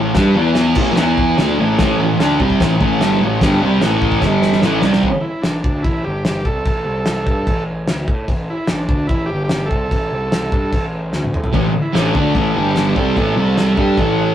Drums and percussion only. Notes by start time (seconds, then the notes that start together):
0.15 kick, snare, crash
0.55 snare, crash
0.75 kick, crash
0.96 snare, crash
1.18 kick
1.38 snare, crash
1.79 kick, snare, crash
2.20 snare, crash
2.40 kick
2.50 kick
2.60 kick, snare, crash
2.81 kick
3.01 snare, crash
3.41 kick, snare, crash
3.82 snare, crash
4.02 kick
4.12 kick
4.22 kick, snare
4.42 snare
4.53 snare
4.62 snare
4.82 snare
4.93 snare
5.03 kick, crash
5.43 snare, crash
5.64 kick
5.84 kick, crash
6.25 snare, crash
6.45 kick
6.66 kick, crash
7.06 snare, crash
7.27 kick
7.47 kick, crash
7.88 snare, crash
8.08 kick
8.28 kick, crash
8.67 snare, crash
8.89 kick
9.09 kick, crash
9.49 snare, crash
9.71 kick
9.91 kick, crash
10.32 snare, crash
10.52 kick
10.73 kick, crash
11.13 snare
11.24 high tom
11.34 mid tom
11.44 floor tom
11.54 kick, crash
11.95 snare, crash
12.15 kick
12.35 kick, crash
12.76 snare, crash
12.96 kick
13.17 kick, crash
13.58 snare, crash
13.77 kick
13.97 kick, crash